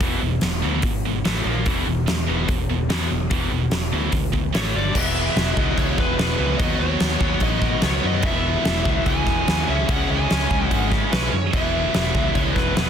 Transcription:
0.01 fingered electric bass E1, overdriven electric guitar E2 B2 E3, kick, open hi-hat
0.21 fingered electric bass E1, overdriven electric guitar E2 B2
0.41 fingered electric bass E1, overdriven electric guitar E2 B2, snare, open hi-hat
0.62 fingered electric bass D2, overdriven electric guitar E2 B2 E3
0.82 fingered electric bass G#1, overdriven electric guitar E2 B2, kick, open hi-hat
1.05 overdriven electric guitar E2 B2
1.25 fingered electric bass A1, overdriven electric guitar A2 E3 A3, snare, open hi-hat
1.45 fingered electric bass A#1, overdriven electric guitar A#2 F3 A#3
1.66 fingered electric bass E1, overdriven electric guitar E2 B2 E3, kick, open hi-hat
1.86 fingered electric bass E1, overdriven electric guitar E2 B2
2.08 fingered electric bass E2, overdriven electric guitar E2 B2, snare, open hi-hat
2.28 fingered electric bass E1, overdriven electric guitar E2 B2 E3
2.48 fingered electric bass E1, overdriven electric guitar E2 B2, kick, open hi-hat
2.69 fingered electric bass E1, overdriven electric guitar E2 B2
2.89 overdriven electric guitar E2 B2 E3, fingered electric bass E2, snare, open hi-hat
3.10 fingered electric bass E1, overdriven electric guitar E2 B2
3.30 fingered electric bass E1, overdriven electric guitar E2 B2 E3, kick, open hi-hat
3.51 fingered electric bass E1, overdriven electric guitar E2 B2
3.71 fingered electric bass E1, overdriven electric guitar E2 B2, snare, open hi-hat
3.92 fingered electric bass D2, overdriven electric guitar E2 B2 E3
4.12 fingered electric bass D2, overdriven electric guitar E2 B2, kick, open hi-hat
4.33 overdriven electric guitar E2 B2, kick
4.54 fingered electric bass A1, overdriven electric guitar A2 E3 A3, lead electric guitar C#5, snare, open hi-hat
4.74 fingered electric bass G1, overdriven electric guitar G2 D3 G3, lead electric guitar D5
4.94 fingered electric bass E1, overdriven electric guitar E2 B2, distorted electric guitar E3 G#3 B3 E4, tonewheel organ E4 B4 F#5, lead electric guitar E5, kick, crash
4.99 overdriven electric guitar E3
5.36 fingered electric bass E1, snare, crash
5.55 fingered electric bass C#2, overdriven electric guitar B2 E3, lead electric guitar D#5, kick
5.61 overdriven electric guitar E2
5.77 fingered electric bass C#2, lead electric guitar C#5, kick, crash
5.98 fingered electric bass E1, lead electric guitar B4, kick
6.18 fingered electric bass E1, overdriven electric guitar E2 B2 E3, lead electric guitar B4, snare, crash
6.38 fingered electric bass C#2, distorted electric guitar E2 B2 E3 G#3 B3 E4
6.42 distorted electric guitar E3
6.57 fingered electric bass D#2, overdriven electric guitar B2 F#3, distorted electric guitar D#3 F#3, tonewheel organ B3 F#4 C#5, lead electric guitar D#5, kick, crash
6.62 distorted electric guitar B3 F#4, overdriven electric guitar B3
6.80 fingered electric bass D#2, lead electric guitar C#5
7.00 fingered electric bass D#2, snare, crash
7.20 fingered electric bass D#2, overdriven electric guitar F#3 B3, kick
7.24 overdriven electric guitar B2
7.40 fingered electric bass A1, lead electric guitar D#5, kick, crash
7.62 kick
7.82 fingered electric bass C#2, overdriven electric guitar B2 F#3, lead electric guitar C#5, snare, crash
7.86 overdriven electric guitar B3
8.03 fingered electric bass F#2, distorted electric guitar B2 F#3 B3 F#4
8.07 distorted electric guitar D#3, lead electric guitar D#5
8.22 fingered electric bass E1, overdriven electric guitar E2 B2 E3, distorted electric guitar E3 G#3 B3, tonewheel organ E4 B4 F#5, lead electric guitar E5, kick, crash
8.27 distorted electric guitar E4
8.65 fingered electric bass E1, snare, crash
8.85 fingered electric bass C#2, overdriven electric guitar B2 E3, kick
8.89 overdriven electric guitar E2
9.06 fingered electric bass C#2, lead electric guitar G#5, kick, crash
9.26 fingered electric bass E1, kick, snare
9.47 fingered electric bass D#2, overdriven electric guitar E2 B2 E3, snare, crash
9.67 fingered electric bass C#2, overdriven electric guitar C#3 G#3 C#4, distorted electric guitar C#3 G#3 C#4, tonewheel organ C#4 G#4 D#5, lead electric guitar E5
9.72 distorted electric guitar E4
9.88 fingered electric bass C#2, lead electric guitar F#5, kick, crash
10.10 fingered electric bass C#2, lead electric guitar G#5
10.29 fingered electric bass C#2, overdriven electric guitar C#3 G#3 C#4, snare, crash
10.51 fingered electric bass C#2, kick
10.68 fingered electric bass G#1, lead electric guitar F#5, kick, crash
10.91 overdriven electric guitar G#3 C#4, kick, snare
10.95 overdriven electric guitar C#3
11.12 fingered electric bass B1, distorted electric guitar C#3 G#3 C#4, lead electric guitar B4, snare, crash
11.16 distorted electric guitar E4
11.32 fingered electric bass F#2, lead electric guitar C#5
11.53 fingered electric bass E1, overdriven electric guitar E2 B2 E3, distorted electric guitar E3 G#3 B3 E4, tonewheel organ E4 B4 F#5, lead electric guitar E5, kick, crash
11.94 fingered electric bass E1, snare, crash
12.14 fingered electric bass C#2, overdriven electric guitar E2 B2 E3, kick
12.35 fingered electric bass C#2, lead electric guitar C#5, kick, crash
12.54 fingered electric bass E1, lead electric guitar B4, kick, snare
12.76 fingered electric bass E1, overdriven electric guitar E2 B2, lead electric guitar B4, snare, crash
12.80 overdriven electric guitar E3

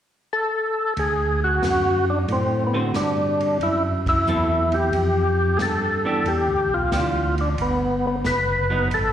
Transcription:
0.33 tonewheel organ A4
0.97 tonewheel organ D2 G#4, ride
1.44 tonewheel organ F#4
1.62 tonewheel organ F#2, snare, hi-hat pedal, ride
2.10 tonewheel organ D4
2.28 tonewheel organ A2, ride
2.32 tonewheel organ C4
2.67 tonewheel organ B3
2.73 hollow-body jazz guitar D3 C4 F#4 B4, tonewheel organ C4
2.94 tonewheel organ G2 D4, snare, hi-hat pedal, ride
3.40 ride
3.60 tonewheel organ F#2 E4, ride
4.06 tonewheel organ E4, kick, ride
4.26 tonewheel organ E2, hollow-body jazz guitar F#3 C4 E4 A4, hi-hat pedal
4.72 tonewheel organ G4, ride
4.93 tonewheel organ F2, ride
5.57 tonewheel organ G2 G#4, snare, hi-hat pedal, ride
5.62 tonewheel organ A4
6.05 hollow-body jazz guitar E3 B3 D4 G4
6.25 tonewheel organ E2 G4, ride
6.47 tonewheel organ D2
6.70 tonewheel organ B1
6.74 tonewheel organ F4
6.92 tonewheel organ D2, hollow-body jazz guitar E3 B3 D4 G4, snare, hi-hat pedal, ride
7.38 tonewheel organ D4, ride
7.58 tonewheel organ G1 B3, ride
8.07 tonewheel organ B3
8.25 tonewheel organ F#1 B4, snare, hi-hat pedal, ride
8.70 hollow-body jazz guitar F#3 B3 D#4
8.90 tonewheel organ G#1 A4, ride

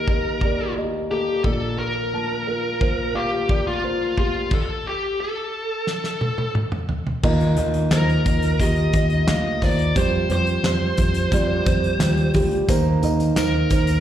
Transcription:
Already playing: felt piano D#2 D#3 A#3 G4 D#5 F5, lead electric guitar A#4
0.08 felt piano A#3 G4 D#5, kick
0.41 felt piano A#3 G4 D5, kick
0.76 felt piano A#3 G4 D#5
1.11 felt piano A#3 G4 A4, lead electric guitar G4
1.44 felt piano A#1 A#2 A#3 F4 D5, lead electric guitar A4, kick
1.79 lead electric guitar A#4
2.14 felt piano A#3 F4 A5
2.47 felt piano A#3 F4 A#4
2.81 felt piano A#3 F4 C5, kick
3.14 felt piano A#3 F4 F5, lead electric guitar G4
3.49 felt piano A#3 F4 D5, kick
3.67 lead electric guitar F4
3.84 felt piano A#3 F4 C5
4.18 felt piano A#3 F4 G4, lead electric guitar F4, kick
4.51 lead electric guitar A4, kick, crash
4.87 lead electric guitar G4
5.20 lead electric guitar A4
5.87 snare
6.04 snare
6.21 high tom
6.38 high tom
6.55 mid tom
6.72 mid tom
6.89 floor tom
7.07 floor tom
7.23 picked electric bass D#2, felt piano D#3 A#3 F4 D#5, kick, crash
7.41 closed hi-hat
7.57 picked electric bass D#2, felt piano A#3 F4 D#5, closed hi-hat
7.74 closed hi-hat
7.91 picked electric bass D#2, felt piano A#3 F4 C5, lead electric guitar A#4, snare, clap, closed hi-hat
8.09 closed hi-hat
8.26 picked electric bass D#2, felt piano A#3 F4 D#5, kick, closed hi-hat
8.42 closed hi-hat
8.60 picked electric bass D#2, felt piano A#3 F4 G4, lead electric guitar D#5, kick, closed hi-hat
8.76 closed hi-hat
8.93 picked electric bass D#2, felt piano A#3 F4 D#5, kick, closed hi-hat
9.10 closed hi-hat
9.27 picked electric bass D2, felt piano A#3 F4 F5, lead electric guitar D#5, snare, clap, closed hi-hat
9.62 picked electric bass D#2, felt piano A#3 F4 C5, lead electric guitar D5, kick, snare, open hi-hat
9.79 closed hi-hat
9.96 picked electric bass F2, felt piano G3 F4 C5, lead electric guitar C5, kick, closed hi-hat
10.29 picked electric bass F2, felt piano G3 F4 C5, lead electric guitar C5, closed hi-hat
10.47 closed hi-hat
10.63 picked electric bass F2, felt piano G3 F4 C5, snare, clap, closed hi-hat
10.97 picked electric bass F2, felt piano G3 F4 C5, kick, closed hi-hat
11.14 closed hi-hat
11.32 picked electric bass F2, felt piano G3 F4 D5, kick, closed hi-hat
11.66 picked electric bass F2, felt piano G3 F4 C5, kick, closed hi-hat
11.84 closed hi-hat
11.99 picked electric bass D#2, felt piano G3 F4 G4, snare, clap, closed hi-hat
12.17 closed hi-hat
12.34 picked electric bass D2, felt piano G3 F4 G4, kick, snare, open hi-hat
12.51 closed hi-hat
12.69 picked electric bass D#2, felt piano D#3 A#3 D#4 C5, kick, closed hi-hat, tambourine
13.02 picked electric bass D#2, felt piano A#3 D#4 D#5, closed hi-hat, tambourine
13.20 closed hi-hat, tambourine
13.36 picked electric bass D#2, felt piano A#3 D#4 C5, lead electric guitar A#4, snare, clap, closed hi-hat, tambourine
13.70 picked electric bass D#2, felt piano A#3 D#4 C5, kick, closed hi-hat, tambourine
13.87 closed hi-hat, tambourine

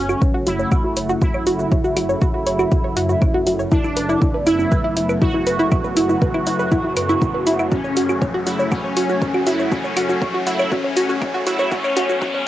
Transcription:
Already playing: detuned saw bass F#1, synth drone F#2 C#3, analog synth pad C#3 F#3 A3 F#4, analog polysynth C#4, riser
0.09 synth pluck F#4, claves, shaker
0.22 synth pluck C#5, kick, shaker
0.34 synth pluck F#4
0.47 detuned saw bass F#1, analog polysynth E4, synth pluck F#4, open hi-hat, low conga, shaker
0.59 synth pluck C#5, shaker
0.72 synth pluck F#4, kick, claves, shaker
0.84 synth pluck F#4
0.97 detuned saw bass F#1, synth pluck C#5, open hi-hat, shaker
1.09 synth pluck F#4, shaker
1.22 analog polysynth E4, synth pluck F#4, kick, low conga, shaker
1.34 synth pluck C#5, claves
1.47 detuned saw bass F#1, synth pluck F#4, open hi-hat, shaker
1.59 synth pluck F#4, shaker
1.72 synth pluck C#5, kick, shaker
1.84 synth pluck F#4, shaker
1.97 detuned saw bass F#1, synth pluck F#4, open hi-hat, low conga, claves, shaker
2.09 synth pluck C#5, shaker
2.22 synth pluck F#4, kick, shaker
2.34 synth pluck F#4
2.47 detuned saw bass F#1, synth pluck C#5, open hi-hat, shaker
2.59 synth pluck F#4, claves, shaker
2.72 synth pluck F#4, kick, low conga, shaker
2.84 synth pluck C#5
2.97 detuned saw bass F#2, synth pluck F#4, open hi-hat, shaker
3.09 synth pluck F#4, shaker
3.22 synth pluck C#5, kick, claves, shaker
3.34 synth pluck F#4
3.47 detuned saw bass F#1, synth pluck F#4, open hi-hat, low conga, shaker
3.59 synth pluck C#5, shaker
3.72 analog synth pad A3 B3 E4, analog polysynth D4, synth pluck E4, kick, shaker
3.84 synth pluck E4, claves, shaker
3.97 detuned saw bass F#1, synth pluck B4, open hi-hat, shaker
4.09 synth pluck E4, shaker
4.22 synth pluck E4, kick, low conga, shaker
4.34 synth pluck B4
4.47 detuned saw bass F#1, synth pluck E4, analog polysynth E4, open hi-hat, claves, shaker
4.59 synth pluck E4, shaker
4.72 synth pluck B4, kick, shaker
4.84 synth pluck E4
4.97 detuned saw bass F#1, synth pluck E4, open hi-hat, low conga, shaker
5.09 synth pluck B4, claves, shaker
5.22 synth pluck E4, analog polysynth F#4, kick, shaker
5.34 synth pluck E4
5.47 detuned saw bass F#1, synth pluck B4, open hi-hat, shaker
5.59 synth pluck E4, shaker
5.72 synth pluck E4, kick, low conga, claves, shaker
5.84 synth pluck B4, shaker
5.97 detuned saw bass F#1, synth pluck E4, open hi-hat, shaker
6.09 synth pluck E4, shaker
6.22 synth pluck B4, kick, shaker
6.34 synth pluck E4, claves
6.47 detuned saw bass F#1, synth pluck E4, open hi-hat, low conga, shaker
6.59 synth pluck B4, shaker
6.72 synth pluck E4, kick, shaker
6.84 synth pluck E4
6.97 detuned saw bass F#2, synth pluck B4, open hi-hat, claves, shaker
7.09 synth pluck E4, shaker
7.22 synth pluck E4, kick, low conga, shaker
7.34 synth pluck B4
7.47 detuned saw bass F#1, synth pluck E4, open hi-hat, shaker
7.59 synth pluck E4, claves, shaker
7.72 analog synth pad C#3 F#3 A3 F#4, analog polysynth C#4, synth pluck F#4, kick, mid tom, low conga, shaker
7.84 synth pluck C#5, shaker
7.97 detuned saw bass F#1, synth pluck F#4, open hi-hat, shaker
8.09 synth pluck F#4, claves, shaker
8.22 synth pluck C#5, kick, mid tom, shaker
8.34 synth pluck F#4
8.47 detuned saw bass F#1, analog polysynth E4, synth pluck F#4, open hi-hat, low conga, shaker
8.59 synth pluck C#5, shaker
8.72 analog polysynth C#4, synth pluck F#4, kick, mid tom, claves, shaker
8.84 synth pluck C#5
8.97 detuned saw bass F#1, synth pluck F#4, open hi-hat, shaker
9.09 synth pluck F#4, shaker
9.22 synth pluck C#5, kick, mid tom, low conga, shaker
9.34 synth pluck F#4, claves
9.47 detuned saw bass F#1, analog polysynth E4, synth pluck F#4, open hi-hat, shaker
9.59 synth pluck C#5, shaker
9.72 analog polysynth C#4, synth pluck F#4, kick, mid tom, shaker
9.84 synth pluck C#5, shaker
9.97 detuned saw bass F#1, synth pluck F#4, open hi-hat, low conga, claves, shaker
10.09 synth pluck F#4, shaker
10.22 synth pluck C#5, kick, mid tom, shaker
10.34 synth pluck F#4
10.47 detuned saw bass F#1, analog polysynth E4, synth pluck F#4, open hi-hat, shaker
10.59 synth pluck C#5, claves, shaker
10.72 analog polysynth C#4, synth pluck F#4, kick, mid tom, low conga, shaker
10.84 synth pluck C#5
10.97 detuned saw bass F#2, synth pluck F#4, open hi-hat, shaker
11.09 synth pluck F#4, shaker
11.22 synth pluck C#5, kick, mid tom, claves, shaker
11.34 synth pluck F#4
11.47 detuned saw bass F#1, analog polysynth E4, synth pluck F#4, open hi-hat, low conga, shaker
11.59 synth pluck C#5, shaker
11.72 analog synth pad B3, analog polysynth C#4, synth pluck F#4, kick, mid tom, shaker
11.84 synth pluck C#5, claves, shaker
11.97 detuned saw bass F#1, synth pluck F#4, open hi-hat, mid tom, shaker
12.09 synth pluck F#4, shaker
12.22 analog polysynth C#4, synth pluck F#4, kick, mid tom, low conga, shaker
12.34 synth pluck C#5

